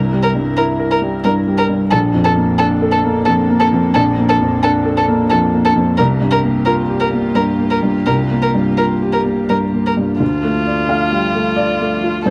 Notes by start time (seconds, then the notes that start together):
Already playing: C2 G3 E4 A#4
0.13 G3
0.23 A#4
0.35 G2
0.57 E4 A#4
0.79 A#4
0.91 A#4
1.02 G3
1.24 G2 A#4
1.47 G3
1.58 A#4
1.69 G2
1.91 A#1 A#3 D4 A4
2.14 F2
2.24 A4
2.36 A#3
2.58 D4 A4
2.82 A4
2.92 A4
3.04 A#3
3.26 F2 A4
3.50 A#3
3.60 A4
3.73 F2
3.94 A#1 A4
4.18 A#3
4.29 A4
4.40 F2
4.63 D4 A4
4.86 A4
4.97 A4
5.08 A#3
5.30 F2 A4
5.54 A#3
5.65 A4
5.76 F2
5.97 C2 A#3 F4 G4 A#4
6.21 G2
6.31 A#4
6.44 A#3
6.65 F4 A#4
6.89 G4
7.00 A#4
7.12 A#3
7.35 G2 A#4
7.59 A#3
7.71 A#4
7.83 G2
8.06 C2 A#4
8.31 A#3
8.42 A#4
8.55 G2
8.77 F4 A#4
9.02 G4
9.13 A#4
9.25 A#3
9.49 G2 A#4
9.73 A#3
9.86 A#4
9.97 G2
10.20 D2 F3 D4 F4 A4
10.43 A3
10.67 D5
10.89 A3 F5
11.12 G3
11.35 A3
11.56 D5
11.81 A3
12.04 F4
12.26 G2 A4 C5